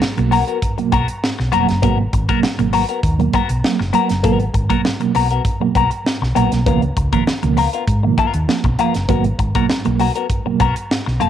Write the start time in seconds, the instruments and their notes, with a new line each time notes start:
0.02 reed electric piano G#2, muted clean electric guitar stroke, muted fingered electric bass stroke, snare
0.17 fingered electric bass B1, reed electric piano B2 F#3 A#3, muted clean electric guitar stroke, closed hi-hat
0.31 reed electric piano F#3 A#3, clean electric guitar B3 F#4 A#4, open hi-hat
0.47 clean electric guitar B3 F#4 A#4, closed hi-hat
0.62 reed electric piano G#2, kick, closed hi-hat
0.78 reed electric piano B2 F#3 A#3, muted clean electric guitar stroke, muted fingered electric bass stroke, closed hi-hat
0.92 fingered electric bass B1, reed electric piano F#3 A#3, clean electric guitar B3 F#4 A#4, kick, closed hi-hat
1.08 muted clean electric guitar stroke, closed hi-hat
1.22 reed electric piano G#2, snare
1.39 fingered electric bass B1, muted clean electric guitar stroke, snare
1.52 fingered electric bass F1, reed electric piano B2 F#3 A#3, clean electric guitar B3 F#4 A#4, closed hi-hat
1.68 fingered electric bass F#1, reed electric piano F#3 A#3, muted clean electric guitar stroke, snare, closed hi-hat
1.82 fingered electric bass G#1, reed electric piano B2 F#3 A#3, clean electric guitar B3 F#4 A#4, kick, closed hi-hat
1.99 muted clean electric guitar stroke
2.13 fingered electric bass G#1, reed electric piano G#2, muted clean electric guitar stroke, kick, closed hi-hat
2.28 reed electric piano B2 F#3 A#3, clean electric guitar B3 F#4 A#4, kick, closed hi-hat
2.42 reed electric piano G#2, muted clean electric guitar stroke, muted fingered electric bass stroke, snare
2.58 fingered electric bass G#1, reed electric piano B2 F#3 A#3, muted clean electric guitar stroke, closed hi-hat
2.73 reed electric piano F#3 A#3, clean electric guitar B3 F#4 A#4, open hi-hat
2.89 clean electric guitar B3 F#4 A#4, closed hi-hat
3.03 fingered electric bass D#2, reed electric piano G#2, kick, closed hi-hat
3.19 reed electric piano B2 F#3 A#3, muted clean electric guitar stroke, closed hi-hat
3.33 reed electric piano F#3 A#3, clean electric guitar B3 F#4 A#4, kick, closed hi-hat
3.49 fingered electric bass B1, muted clean electric guitar stroke, closed hi-hat
3.64 reed electric piano F#3 A#3, muted fingered electric bass stroke, snare
3.80 fingered electric bass F#1, reed electric piano G#2, muted clean electric guitar stroke, snare
3.93 reed electric piano F#3 A#3, clean electric guitar B3 F#4 A#4, closed hi-hat
4.09 fingered electric bass F#1, muted clean electric guitar stroke, snare, closed hi-hat
4.23 fingered electric bass G#1, reed electric piano B2 F#3 A#3, clean electric guitar B3 F#4 A#4, kick, closed hi-hat
4.40 muted clean electric guitar stroke, closed hi-hat
4.54 fingered electric bass G#1, reed electric piano G#2, muted clean electric guitar stroke, kick, closed hi-hat
4.69 reed electric piano B2 F#3 A#3, clean electric guitar B3 F#4 A#4, kick, closed hi-hat
4.84 reed electric piano G#2, muted clean electric guitar stroke, snare
4.99 reed electric piano B2 F#3 A#3, muted clean electric guitar stroke, closed hi-hat
5.15 fingered electric bass B1, clean electric guitar B3 F#4 A#4, open hi-hat
5.31 clean electric guitar B3 F#4 A#4, closed hi-hat
5.44 reed electric piano G#2, kick, closed hi-hat
5.60 reed electric piano B2 F#3 A#3, muted clean electric guitar stroke, muted fingered electric bass stroke
5.74 fingered electric bass B1, reed electric piano F#3 A#3, clean electric guitar B3 F#4 A#4, kick, closed hi-hat
5.91 muted clean electric guitar stroke, closed hi-hat
6.05 reed electric piano G#2, snare
6.22 fingered electric bass B1, muted clean electric guitar stroke, snare
6.35 fingered electric bass A#1, reed electric piano B2 F#3 A#3, clean electric guitar B3 F#4 A#4, closed hi-hat
6.52 fingered electric bass B1, reed electric piano F#3 A#3, muted clean electric guitar stroke, snare, closed hi-hat
6.66 fingered electric bass C#2, reed electric piano B2 D#3 F3 A#3, clean electric guitar B3 F4 A#4, kick, closed hi-hat
6.82 muted clean electric guitar stroke, closed hi-hat
6.97 fingered electric bass C#2, muted clean electric guitar stroke, kick, closed hi-hat
7.12 reed electric piano B2 D#3 F3 A#3, clean electric guitar B3 F4 A#4, kick, closed hi-hat
7.27 muted clean electric guitar stroke, muted fingered electric bass stroke, snare
7.42 fingered electric bass C#2, reed electric piano B2 D#3 F3 A#3, muted clean electric guitar stroke, closed hi-hat
7.57 reed electric piano F3 A#3, clean electric guitar B3 F4 A#4, open hi-hat
7.73 clean electric guitar B3 F4 A#4, closed hi-hat
7.87 fingered electric bass G#2, kick, closed hi-hat
8.03 reed electric piano B2 D#3 F3 A#3, muted clean electric guitar stroke
8.18 reed electric piano F3 A#3, clean electric guitar B3 F4 A#4, kick, closed hi-hat
8.34 fingered electric bass D#2, muted clean electric guitar stroke, closed hi-hat
8.48 reed electric piano F3 A#3, muted fingered electric bass stroke, snare
8.64 fingered electric bass B1, muted clean electric guitar stroke, kick, closed hi-hat
8.78 reed electric piano F3 A#3, clean electric guitar B3 F4 A#4, closed hi-hat
8.94 fingered electric bass F#1, muted clean electric guitar stroke, snare, closed hi-hat
9.08 fingered electric bass G#1, reed electric piano B2 F#3 A#3, clean electric guitar B3 F#4 A#4, kick, closed hi-hat
9.24 muted clean electric guitar stroke, closed hi-hat
9.39 fingered electric bass G#1, reed electric piano G#2, muted clean electric guitar stroke, kick, closed hi-hat
9.54 reed electric piano B2 F#3 A#3, clean electric guitar B3 F#4 A#4, kick, closed hi-hat
9.69 reed electric piano G#2, muted clean electric guitar stroke, muted fingered electric bass stroke, snare
9.85 fingered electric bass B1, reed electric piano B2 F#3 A#3, muted clean electric guitar stroke, closed hi-hat
9.99 reed electric piano F#3 A#3, clean electric guitar B3 F#4 A#4, open hi-hat
10.15 clean electric guitar B3 F#4 A#4, closed hi-hat
10.30 reed electric piano G#2, kick, closed hi-hat
10.46 reed electric piano B2 F#3 A#3, muted clean electric guitar stroke, muted fingered electric bass stroke
10.60 fingered electric bass B1, reed electric piano F#3 A#3, clean electric guitar B3 F#4 A#4, kick, closed hi-hat
10.76 closed hi-hat
10.90 reed electric piano G#2, snare
11.06 fingered electric bass B1, muted clean electric guitar stroke, snare
11.20 fingered electric bass F1, reed electric piano B2 F#3 A#3, clean electric guitar B3 F#4 A#4, closed hi-hat